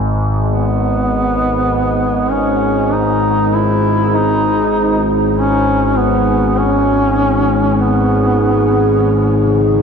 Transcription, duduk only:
0.46 B3
2.31 C#4
2.94 D#4
3.54 E4
4.15 D#4
5.36 C#4
5.98 B3
6.59 C#4
7.81 B3

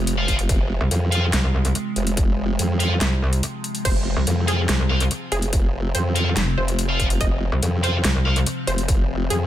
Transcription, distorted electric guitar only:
0.18 F4 C5 F5
1.12 F4 C5 F5
2.80 F4 C5 F5
4.48 F4 C5 F5
4.90 F4 C5 F5
6.16 F4 C5 F5
6.89 F4 C5 F5
7.83 F4 C5 F5
8.25 F4 C5 F5

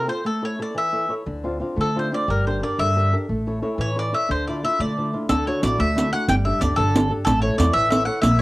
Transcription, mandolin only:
0.09 C5
0.26 A4
0.45 C#5
0.62 D5
0.78 E5
1.81 A4
1.99 C5
2.14 D5
2.30 A#4
2.47 C5
2.63 D5
2.79 E5
3.81 C#5
3.99 D5
4.14 E5
4.31 C5
4.48 D5
4.65 E5
4.80 D5
5.29 A4
5.47 C#5
5.63 D5
5.80 E5
6.13 F#5
6.29 G5
6.45 E5
6.61 D5
6.76 A4
7.25 A4
7.42 C#5
7.58 D5
7.73 E5
7.90 E5
8.05 F#5
8.22 E5
8.39 C#5

